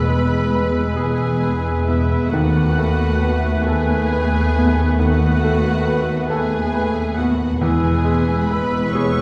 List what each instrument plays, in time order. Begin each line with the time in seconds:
Already playing: double bass section E1, cello section E2, grand piano B2 B3 G#4 B4, viola section G#3 B3, french horn section G#3 B4, bassoon G#3, clarinet B3, violin section B4 B5, oboe B4, flute E6
0.08 grand piano G#3
0.55 grand piano B4
0.96 grand piano G#4, violin section G#4 G#5
1.43 grand piano B4
1.87 grand piano B3, violin section E4 E5
2.29 cello section D#2, double bass section D#2, bassoon A3, french horn section A3 B4, viola section A3 B3, clarinet B3, violin section F#4 F#5, oboe B4, flute F#6
2.33 grand piano D#2
2.78 grand piano A3
3.22 grand piano B4
3.64 violin section G#4 G#5, grand piano A4
4.12 grand piano B4
4.56 grand piano B3
4.99 grand piano D#2, violin section F#4 F#5
5.44 grand piano A3
5.87 grand piano B4
6.29 violin section G#4 G#5, grand piano A4
6.75 grand piano B4
7.17 grand piano B3, violin section F#4 F#5
7.59 double bass section E1, grand piano E2, cello section E2, viola section G#3 B3, bassoon G#3, french horn section G#3 B4, clarinet B3, violin section G#4 G#5, oboe B4, flute E6
8.05 grand piano G#3
8.44 violin section B5
8.49 violin section B4, grand piano B4
8.90 violin section C#5 C#6
8.95 grand piano G#4